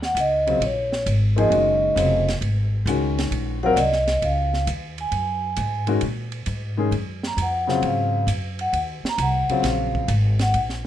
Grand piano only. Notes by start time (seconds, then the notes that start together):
0.47 C#3 F#3 C4 F4
1.36 F3 A#3 D#4 G#4
1.49 D#3 G#3 C#4 F#4
1.95 C#3 F#3 C4 F4
2.87 D#3 G#3 C#4 F#4
3.63 F#3 C4 F4 A#4
5.87 D#3 G#3 C#4 F#4
6.77 D#3 G#3 C#4 G#4
7.67 C#3 F#3 C4 F4
9.50 C#3 F#3 C4 F4